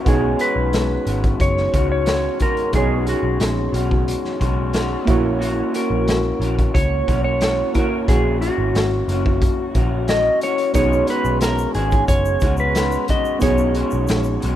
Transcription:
0.05 picked electric bass B1, clean electric guitar B2 D#3 G#3 C#4 F#4, synth keys B3 D#4 G#4, electric slide guitar G#4, kick, closed hi-hat
0.10 synth keys C#5
0.38 clean electric guitar D#3 G#3 C#4 F#4, electric slide guitar B4, closed hi-hat
0.56 picked electric bass B1
0.73 snare, closed hi-hat
1.05 picked electric bass G#1, clean electric guitar D#3 G#3 C#4 F#4, closed hi-hat
1.24 kick, closed hi-hat
1.40 picked electric bass F#1, electric slide guitar C#5, kick, closed hi-hat
1.57 snare
1.72 picked electric bass C#2, clean electric guitar D#3 G#3 C#4 F#4, kick, closed hi-hat
1.92 electric slide guitar C#5
2.05 clean electric guitar D#3 G#3 C#4 F#4, snare, closed hi-hat
2.39 clean electric guitar D#3 G#3 C#4 F#4, electric slide guitar A#4, kick, closed hi-hat
2.57 closed hi-hat
2.73 picked electric bass B1, clean electric guitar B2 D#3 G#3 C#4 F#4, synth keys B3 D#4 G#4, electric slide guitar G#4, kick, closed hi-hat
2.77 synth keys C#5
3.06 clean electric guitar D#3 G#3 C#4 F#4, electric slide guitar F#4, closed hi-hat
3.23 picked electric bass B1
3.40 picked electric bass A#1, snare, closed hi-hat
3.72 picked electric bass B1, clean electric guitar D#3 G#3 C#4 F#4, closed hi-hat
3.91 kick
4.08 closed hi-hat
4.25 snare
4.39 picked electric bass B1, clean electric guitar D#3 G#3 C#4 F#4, kick, closed hi-hat
4.73 clean electric guitar D#3 G#3 C#4 F#4, snare, closed hi-hat
5.05 picked electric bass A#1, clean electric guitar E3 A#3 C#4 F#4, synth keys A#3 E4 F#4, kick, closed hi-hat
5.10 synth keys C#5
5.39 clean electric guitar A#2 E3 A#3 C#4 F#4, electric slide guitar F#4, closed hi-hat
5.71 clean electric guitar E3 A#3 C#4 F#4, closed hi-hat
5.76 electric slide guitar A#4
5.90 picked electric bass A#1
6.08 snare, closed hi-hat
6.40 picked electric bass A#1, clean electric guitar E3 A#3 C#4 F#4, closed hi-hat
6.59 kick, closed hi-hat
6.74 picked electric bass C#2, electric slide guitar C#5, kick, closed hi-hat
7.08 picked electric bass B1, clean electric guitar E3 A#3 C#4 F#4, kick, closed hi-hat
7.24 electric slide guitar C#5
7.41 clean electric guitar E3 A#3 C#4 F#4, snare, closed hi-hat
7.73 clean electric guitar E3 A#3, synth keys A#3 E4 F#4, electric slide guitar A#4, kick, closed hi-hat
7.78 clean electric guitar C#4 F#4, synth keys C#5
8.08 picked electric bass A#1, clean electric guitar A#2 E3 A#3 C#4 F#4, electric slide guitar G#4, kick, closed hi-hat
8.41 clean electric guitar E3 A#3 C#4 F#4, electric slide guitar F#4, closed hi-hat
8.58 picked electric bass G#1
8.74 picked electric bass G#1, snare, closed hi-hat
9.08 picked electric bass F#1, clean electric guitar E3 A#3 C#4 F#4, closed hi-hat
9.26 kick
9.42 kick, closed hi-hat
9.74 picked electric bass A#1, clean electric guitar E3 A#3 C#4 F#4, kick, closed hi-hat
10.07 clean electric guitar E3 A#3 C#4 F#4, electric slide guitar D#5, snare, closed hi-hat
10.41 clean electric guitar E3 A#3 C#4 F#4, electric slide guitar C#5, closed hi-hat
10.58 closed hi-hat
10.73 picked electric bass B1, clean electric guitar B2 D#3 G#3 C#4, synth keys B3 D#4 G#4, electric slide guitar C#5, kick, closed hi-hat, shaker
10.78 clean electric guitar F#4, synth keys C#5
10.93 shaker
11.07 clean electric guitar D#3 G#3 C#4 F#4, electric slide guitar B4, closed hi-hat
11.25 picked electric bass B1, shaker
11.41 electric slide guitar A#4, snare, closed hi-hat, shaker
11.58 shaker
11.74 picked electric bass G#1, clean electric guitar D#3 G#3 C#4 F#4, electric slide guitar G#4, closed hi-hat
11.91 kick, closed hi-hat, shaker
12.08 picked electric bass F#1, electric slide guitar C#5, kick, closed hi-hat, shaker
12.25 shaker
12.40 picked electric bass C#2, clean electric guitar D#3 G#3 C#4, kick, closed hi-hat, shaker
12.45 clean electric guitar F#4
12.57 electric slide guitar B4, shaker
12.75 clean electric guitar D#3 G#3 C#4 F#4, snare, closed hi-hat, shaker
12.92 shaker
13.07 clean electric guitar D#3 G#3 C#4 F#4, electric slide guitar D#5, kick, closed hi-hat
13.25 shaker
13.39 picked electric bass B1, clean electric guitar B2 D#3 G#3 C#4, synth keys B3 D#4 G#4, electric slide guitar C#5, kick, closed hi-hat, shaker
13.43 clean electric guitar F#4, synth keys C#5
13.58 shaker
13.74 clean electric guitar D#3 G#3 C#4 F#4, closed hi-hat
13.91 picked electric bass B1, shaker
14.07 picked electric bass A#1, snare, closed hi-hat, shaker
14.24 shaker
14.41 picked electric bass B1, clean electric guitar D#3 G#3 C#4 F#4, closed hi-hat

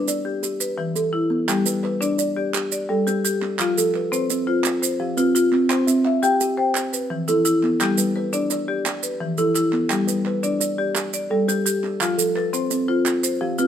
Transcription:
Already playing: marimba D4 B4, kalimba C5
0.08 kalimba D4 D5, maracas
0.25 marimba G4
0.43 kalimba G4, maracas
0.60 marimba B4, maracas
0.78 marimba E3, kalimba B4
0.95 kalimba E3 A4, maracas
1.13 marimba E4
1.30 kalimba B3
1.48 marimba G3 G4, clap, maracas
1.66 kalimba G3 B4, maracas
1.83 marimba B4, kalimba C5, clap
2.01 marimba D4 D5, kalimba C5, maracas
2.19 kalimba D4 D5, maracas
2.36 marimba G4 D5
2.54 kalimba G4, clap, maracas
2.72 marimba D5, maracas
2.89 marimba G3, kalimba A4
3.07 kalimba D4 C5, marimba G4, maracas
3.24 marimba G4, maracas
3.42 kalimba D4, clap
3.59 marimba F3 F4, clap, maracas
3.78 kalimba F3 A4, maracas
3.94 kalimba B4, clap
4.12 marimba C4 C5, kalimba B4, maracas
4.30 kalimba C4 C5, maracas
4.47 marimba F4 C5
4.64 kalimba F4, clap, maracas
4.82 marimba C5, maracas
5.00 marimba F3, kalimba G4
5.17 kalimba C4 B4, marimba F4, maracas
5.35 marimba F4, maracas
5.52 kalimba C4, clap
5.70 marimba C4 C5, clap, maracas
5.87 kalimba C4 E5, maracas
6.05 marimba E5, kalimba F5, clap
6.22 marimba G4 G5, kalimba F5, maracas
6.41 kalimba G4 G5, maracas
6.57 marimba C5 G5
6.75 kalimba C5, clap, maracas
6.93 marimba B4, maracas
7.10 marimba E3, kalimba F3
7.28 kalimba E3 A4, marimba E4, maracas
7.45 marimba E4, maracas
7.63 kalimba B3, clap
7.80 marimba G3 G4, clap, maracas
7.98 kalimba G3 B4, maracas
8.16 marimba B4, kalimba C5
8.33 marimba D4 D5, kalimba C5, maracas
8.50 kalimba D4 D5, clap, maracas
8.68 marimba G4 D5
8.86 kalimba G4, clap, maracas
9.03 marimba B4, maracas
9.20 marimba E3, kalimba F3
9.38 kalimba E3 A4, marimba E4, maracas
9.55 marimba E4, clap, maracas
9.73 kalimba B3, clap
9.90 marimba G3 G4, clap, maracas
10.07 kalimba G3 B4, maracas
10.25 marimba B4, kalimba C5, clap
10.43 marimba D4 D5, kalimba C5, maracas
10.60 kalimba D4 D5, maracas
10.78 marimba G4 D5
10.95 kalimba G4, clap, maracas
11.13 marimba D5, maracas
11.30 marimba G3, kalimba A4
11.48 kalimba D4 C5, marimba G4, maracas
11.66 marimba G4, maracas
11.84 kalimba D4, clap
12.01 marimba F3 F4, clap, maracas
12.18 kalimba F3 A4, maracas
12.35 marimba A4, kalimba B4, clap
12.53 marimba C4 C5, maracas
12.70 kalimba C4 C5, maracas
12.88 marimba F4 C5
13.05 kalimba F4, clap, maracas
13.23 marimba C5, maracas
13.41 marimba F3, kalimba G4
13.58 kalimba C4 B4, marimba F4, maracas

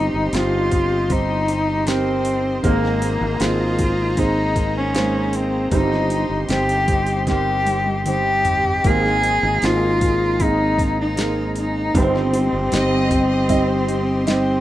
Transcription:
Already playing: felt piano G2 G3 C4 D#4 G4 C5, steel-string acoustic guitar G3 C4 D#4 G4, cello D#4, analog synth pad G4 C5 D#5 C6
0.14 fretless electric bass G1
0.32 fretless electric bass G1, steel-string acoustic guitar G3 C4 D#4 G4, felt piano G3 C4 D#4 G4 C5, cello F4, snare, open hi-hat
0.71 steel-string acoustic guitar G3 C4 D#4 G4, kick, open hi-hat
1.09 felt piano G3 C4 D#4 G4 C5, cello D#4, kick, open hi-hat
1.48 steel-string acoustic guitar G3 C4 D#4 G4, open hi-hat
1.87 steel-string acoustic guitar G3 C4 D#4 G4, felt piano G3 C4 D#4 G4 A#4, cello C4, snare, open hi-hat
2.25 open hi-hat
2.63 fretless electric bass G#1, felt piano G#2 D#3 A#3 C4 D#4 G#4 A#4, steel-string acoustic guitar G#3 C4 D#4 A#4, cello A#3, analog synth pad G#4 D#5 A#5, kick, open hi-hat
2.85 snare
3.02 steel-string acoustic guitar C4 D#4 A#4, open hi-hat
3.21 fretless electric bass G#1
3.40 fretless electric bass G#1, steel-string acoustic guitar G#3 C4 D#4 A#4, felt piano A#3 C4 D#4 G#4 C5, cello F4, snare, open hi-hat
3.79 steel-string acoustic guitar C4 D#4, kick, open hi-hat
4.17 felt piano A#3 C4 D#4 G#4 C5, cello D#4, kick, open hi-hat
4.56 steel-string acoustic guitar C4 D#4 A#4, kick, open hi-hat
4.77 cello C#4
4.94 steel-string acoustic guitar G#3 D#4 A#4, felt piano G#3 A#3 D#4 G#4 C5, snare, open hi-hat
5.33 cello C4, open hi-hat
5.71 fretless electric bass G1, steel-string acoustic guitar G2 D#3 G3 C4 D#4 G4, felt piano G2 G3 C4 D#4 G4 C5, cello D#4, analog synth pad G4 D#5 C6, kick, open hi-hat
5.93 snare
6.10 steel-string acoustic guitar G3 C4 D#4 G4, open hi-hat
6.30 fretless electric bass G1
6.48 fretless electric bass G1, steel-string acoustic guitar G3 C4 D#4 G4, felt piano G3 C4 D#4 G4 C5, cello G4, snare, open hi-hat
6.69 open hi-hat
6.87 steel-string acoustic guitar G3 C4 D#4 G4, kick, open hi-hat
7.07 open hi-hat
7.27 felt piano G3 C4 D#4 G4 A#4, cello G4, kick, snare, open hi-hat
7.66 steel-string acoustic guitar G3 C4 D#4 G4, open hi-hat, high tom
7.86 high tom
8.05 steel-string acoustic guitar G3 C4 D#4 G4, felt piano G3 C4 D#4 G4 C5, cello G4, open hi-hat, mid tom
8.45 floor tom, open hi-hat
8.65 floor tom
8.84 fretless electric bass G#1, felt piano G#2 D#3 A#3 C4 D#4 G#4 A#4, steel-string acoustic guitar G#3 C4 D#4 A#4, analog synth pad G#4 A#5, cello G#4, kick, open hi-hat
9.06 snare
9.22 steel-string acoustic guitar C4 D#4 A#4, open hi-hat
9.43 fretless electric bass G#1
9.62 fretless electric bass G#1, steel-string acoustic guitar G#3 C4 D#4 A#4, felt piano A#3 C4 D#4 G#4 C5, cello F4, snare, open hi-hat
10.00 steel-string acoustic guitar C4 D#4 A#4, kick, open hi-hat
10.40 felt piano A#3 C4 D#4 G#4 A#4, cello D#4, kick, open hi-hat
10.77 steel-string acoustic guitar C4 D#4 A#4, kick, open hi-hat
11.01 cello D#4
11.16 steel-string acoustic guitar G#3 C4 D#4 A#4, felt piano A#3 C4 D#4 G#4 A#4, snare, open hi-hat
11.56 cello D#4, open hi-hat
11.94 fretless electric bass G1, steel-string acoustic guitar G2 D#3 G3 C4 D#4 G4, felt piano G2 G3 C4 D#4 G4 B4, cello C4, analog synth pad G4 D#5 C6, kick, open hi-hat
12.02 felt piano C5
12.16 snare
12.32 steel-string acoustic guitar G3 C4 D#4 G4, open hi-hat
12.53 fretless electric bass G1
12.71 fretless electric bass G1, steel-string acoustic guitar G3 C4 D#4 G4, felt piano G3 C4 D#4 G4 C5, violin section D#5, snare, open hi-hat
13.10 steel-string acoustic guitar G3 C4 D#4 G4, kick, open hi-hat
13.29 violin section D#5
13.48 felt piano G3 C4 D#4 G4 D#5, kick, open hi-hat
13.68 violin section C5
13.87 steel-string acoustic guitar G3 C4 D#4 G4, open hi-hat
14.26 felt piano G3 C4 D#4 G4 D#5, steel-string acoustic guitar G3 C4 D#4 G4, cello C4, snare, open hi-hat

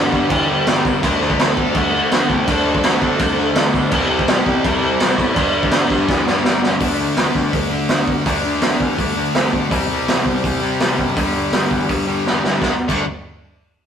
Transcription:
Already playing: distorted electric guitar G2 D3 G3, baritone saxophone G2, lead electric guitar F#4 F#5
0.12 baritone saxophone G2, distorted electric guitar G2 D3 G3, lead electric guitar F#4 F#5, kick
0.30 baritone saxophone E3, lead electric guitar G4 G5, kick, crash
0.50 baritone saxophone G2
0.67 baritone saxophone G3, snare, crash
0.85 baritone saxophone C3, kick
1.02 baritone saxophone D2, distorted electric guitar D3 A3 D4, kick, crash
1.22 baritone saxophone D2
1.30 kick
1.39 baritone saxophone D2, lead electric guitar A4 A5, snare, crash
1.56 distorted electric guitar D3 A3 D4, kick
1.75 baritone saxophone D2, lead electric guitar F#4 F#5, kick, crash
1.95 baritone saxophone D2
2.12 baritone saxophone D3, lead electric guitar F#4 F#5, snare, crash
2.30 baritone saxophone C2, lead electric guitar G4 G5, kick
2.47 baritone saxophone D2, distorted electric guitar D3 A3 D4, lead electric guitar A4, kick, crash
2.53 lead electric guitar A5
2.75 kick
2.83 baritone saxophone D2, snare, crash
3.02 baritone saxophone D2, distorted electric guitar D3 A3 D4, kick
3.19 baritone saxophone C3, kick, crash
3.38 baritone saxophone D2
3.55 baritone saxophone D3, snare, crash
3.74 baritone saxophone B2, kick
3.91 baritone saxophone C2, distorted electric guitar C3 G3 C4, kick, crash
4.10 baritone saxophone C2
4.19 kick
4.27 baritone saxophone C2, lead electric guitar G4 G5, snare, crash
4.46 baritone saxophone C2, distorted electric guitar C3 G3 C4, kick
4.64 baritone saxophone C2, lead electric guitar E4 E5, kick, crash
4.82 baritone saxophone C2
5.00 baritone saxophone C3, snare, crash
5.17 baritone saxophone A2, lead electric guitar E4 E5, kick
5.34 distorted electric guitar G2 D3, baritone saxophone G2, lead electric guitar D4 D5, kick, crash
5.39 distorted electric guitar G3
5.63 kick
5.71 baritone saxophone G2, snare, crash
5.90 baritone saxophone G2, distorted electric guitar G2 D3 G3, kick
6.09 baritone saxophone E3, kick, snare
6.27 baritone saxophone G2, snare
6.45 baritone saxophone G3, snare
6.63 baritone saxophone C#2, snare
6.80 baritone saxophone D2, distorted electric guitar D3 A3 D4, kick, open hi-hat
6.99 baritone saxophone D2
7.17 baritone saxophone D2, snare, open hi-hat
7.35 baritone saxophone D2, kick
7.53 baritone saxophone D2, kick, open hi-hat
7.70 baritone saxophone D3, distorted electric guitar D3 A3 D4
7.89 baritone saxophone D2, distorted electric guitar D3 A3 D4, snare, open hi-hat
8.08 kick
8.25 baritone saxophone D2, distorted electric guitar D3 A3 D4, kick, open hi-hat
8.45 baritone saxophone D2
8.62 baritone saxophone D3, snare, open hi-hat
8.80 baritone saxophone C2, kick
8.98 baritone saxophone D2, kick, open hi-hat
9.17 baritone saxophone D2, distorted electric guitar D3 A3 D4
9.35 baritone saxophone C2, distorted electric guitar D3 A3 D4, snare, open hi-hat
9.53 baritone saxophone D2, kick
9.70 baritone saxophone C2, distorted electric guitar C3 G3 C4, kick, open hi-hat
9.90 baritone saxophone C2
10.08 baritone saxophone C2, snare, open hi-hat
10.26 baritone saxophone C2, kick
10.44 baritone saxophone C2, kick, open hi-hat
10.60 baritone saxophone C3, distorted electric guitar C3 G3 C4
10.79 baritone saxophone C2, distorted electric guitar C3 G3 C4, snare, open hi-hat
10.98 baritone saxophone F#2, kick
11.16 distorted electric guitar G2 D3 G3, baritone saxophone G2, kick, open hi-hat
11.35 baritone saxophone G2
11.53 baritone saxophone G3, snare, open hi-hat
11.71 baritone saxophone E2, kick
11.89 baritone saxophone G2, kick, open hi-hat
12.06 baritone saxophone G2, distorted electric guitar G2 D3 G3
12.25 baritone saxophone E2, distorted electric guitar G2 D3 G3, snare
12.43 baritone saxophone E3, snare
12.61 baritone saxophone D2, distorted electric guitar D3 A3 D4, kick, snare
12.88 baritone saxophone D2, distorted electric guitar D3 A3 D4, kick, crash

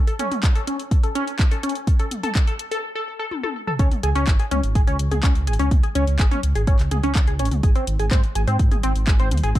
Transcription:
0.07 synth arpeggio sound A4, closed hi-hat
0.19 synth arpeggio sound C#4, closed hi-hat, mid tom
0.32 closed hi-hat, mid tom
0.43 kick, clap, closed hi-hat
0.55 synth arpeggio sound A4, closed hi-hat
0.67 synth arpeggio sound C#4, closed hi-hat
0.80 closed hi-hat
0.91 kick, closed hi-hat
1.03 synth arpeggio sound A4, closed hi-hat
1.15 synth arpeggio sound C#4, closed hi-hat
1.28 closed hi-hat
1.39 kick, clap, closed hi-hat
1.51 synth arpeggio sound A4, closed hi-hat
1.63 synth arpeggio sound C#4, closed hi-hat
1.69 closed hi-hat
1.75 closed hi-hat
1.87 kick, closed hi-hat
1.99 synth arpeggio sound A4, closed hi-hat
2.11 closed hi-hat, mid tom
2.23 synth arpeggio sound A4, closed hi-hat, mid tom
2.35 kick, clap, closed hi-hat
2.47 synth arpeggio sound A4, closed hi-hat
2.59 closed hi-hat
2.71 synth arpeggio sound A4, closed hi-hat
2.95 synth arpeggio sound A4
3.19 synth arpeggio sound A4
3.31 high tom
3.43 synth arpeggio sound A4, high tom
3.67 synth arpeggio sound A4, mid tom
3.79 detuned saw bass C#2, synth arpeggio sound C#4 C#5, kick, closed hi-hat
3.91 closed hi-hat, mid tom
4.03 detuned saw bass C#2, synth arpeggio sound G#4 G#5, closed hi-hat
4.15 detuned saw bass C#2, synth arpeggio sound C#4 C#5, closed hi-hat
4.27 detuned saw bass G#1, kick, clap, closed hi-hat
4.39 synth arpeggio sound G#4 G#5, closed hi-hat
4.51 detuned saw bass C#2, synth arpeggio sound C#4 C#5, closed hi-hat, mid tom
4.63 detuned saw bass G#1, closed hi-hat
4.75 detuned saw bass G#1, synth arpeggio sound G#4 G#5, kick, closed hi-hat
4.87 detuned saw bass C#2, synth arpeggio sound C#4 C#5, closed hi-hat
4.99 detuned saw bass C#2, closed hi-hat
5.11 detuned saw bass C#2, synth arpeggio sound G#4 G#5, closed hi-hat, mid tom
5.23 detuned saw bass C#2, synth arpeggio sound C#4 C#5, kick, clap, closed hi-hat
5.35 closed hi-hat
5.47 detuned saw bass G#1, synth arpeggio sound G#4 G#5, closed hi-hat
5.53 closed hi-hat
5.59 detuned saw bass C#2, synth arpeggio sound C#4 C#5, closed hi-hat
5.71 detuned saw bass C#2, kick, closed hi-hat, mid tom
5.83 synth arpeggio sound G#4 G#5, closed hi-hat
5.95 detuned saw bass C#2, synth arpeggio sound C#4 C#5, closed hi-hat
6.07 detuned saw bass C#2, closed hi-hat
6.19 detuned saw bass G#1, synth arpeggio sound G#4 G#5, kick, clap, closed hi-hat
6.31 synth arpeggio sound C#4 C#5, closed hi-hat, mid tom
6.43 detuned saw bass C#2, closed hi-hat
6.55 detuned saw bass G#1, synth arpeggio sound G#4 G#5, closed hi-hat
6.67 detuned saw bass G#1, synth arpeggio sound C#4 C#5, kick, closed hi-hat
6.79 detuned saw bass C#2, clap, closed hi-hat
6.91 detuned saw bass C#2, synth arpeggio sound G#4 G#5, closed hi-hat, mid tom
7.03 detuned saw bass C#2, synth arpeggio sound C#4 C#5, closed hi-hat
7.15 detuned saw bass C#2, kick, clap, closed hi-hat
7.27 synth arpeggio sound G#4 G#5, closed hi-hat
7.39 detuned saw bass G#1, synth arpeggio sound C#4 C#5, closed hi-hat
7.45 closed hi-hat
7.51 detuned saw bass C#2, closed hi-hat, mid tom
7.63 detuned saw bass G#1, synth arpeggio sound G#4 G#5, kick, closed hi-hat
7.75 synth arpeggio sound C4 C5, closed hi-hat
7.87 detuned saw bass G#1, closed hi-hat
7.99 detuned saw bass G#1, synth arpeggio sound G#4 G#5, closed hi-hat
8.11 detuned saw bass G#2, synth arpeggio sound C4 C5, kick, clap, closed hi-hat, mid tom
8.24 closed hi-hat
8.35 detuned saw bass G#1, synth arpeggio sound G#4 G#5, closed hi-hat
8.47 detuned saw bass G#2, synth arpeggio sound C4 C5, closed hi-hat
8.59 detuned saw bass G#2, kick, closed hi-hat
8.71 detuned saw bass G#1, synth arpeggio sound G#4 G#5, closed hi-hat, mid tom
8.83 detuned saw bass G#1, synth arpeggio sound C4 C5, closed hi-hat
8.96 detuned saw bass G#1, closed hi-hat
9.07 detuned saw bass G#1, synth arpeggio sound G#4 G#5, kick, clap, closed hi-hat
9.20 synth arpeggio sound C4 C5, closed hi-hat
9.31 detuned saw bass D#2, closed hi-hat, mid tom
9.37 closed hi-hat
9.43 detuned saw bass G#1, synth arpeggio sound G#4 G#5, closed hi-hat
9.55 detuned saw bass G#1, synth arpeggio sound C4 C5, kick, closed hi-hat

